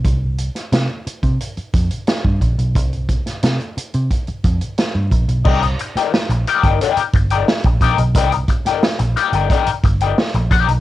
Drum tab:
CC |----------------|----------------|x---------------|----------------|
HH |x-xxx-xxxxxxx-xx|xxxxxxxxxxxxx-xx|-xxx-xxxxxxx-xxx|xxxx-xxxxxxx-xxx|
SD |---oo-------o---|---oo-------o---|---oo-------o---|---oo-------o---|
BD |o------o--o--oo-|o-o-----o-o---o-|o------o--o--oo-|o-o-----o-o---o-|